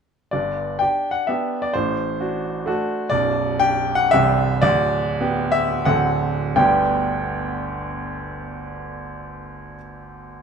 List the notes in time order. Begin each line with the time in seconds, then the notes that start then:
0.31 G1 G2 D5
0.79 D4 G4 G5
1.11 F#5
1.27 B3 D4 G4 E5
1.62 D5
1.74 A1 A2 C5
2.20 D4 F#4
2.66 A3 D4 F#4
3.10 B0 B1 D5
3.60 D4 G4 G5
3.95 F#5
4.11 C1 C2 G3 C4 G4 E5
4.62 D1 D2 D5
5.21 B3 G4
5.52 E5
5.85 D1 D2 D3 C4 A4 F#5
6.56 G1 D2 G3 B3 D4 G4 G5